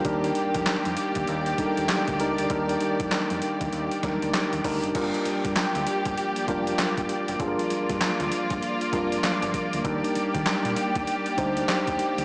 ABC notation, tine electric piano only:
X:1
M:4/4
L:1/16
Q:"Swing 16ths" 1/4=98
K:Gphr
V:1 name="Tine electric piano"
[G,DEB]6 z4 [G,DE=AB]3 z [G,DEB]2 | [G,DEB]6 z4 [G,DEB]3 z [G,DEB]2 | [G,DFB]6 z4 [G,DFB]4 z2 | [G,DFAB]6 z4 [G,DFB]4 z2 |
[G,DEB]6 z4 [G,DEc]4 z2 |]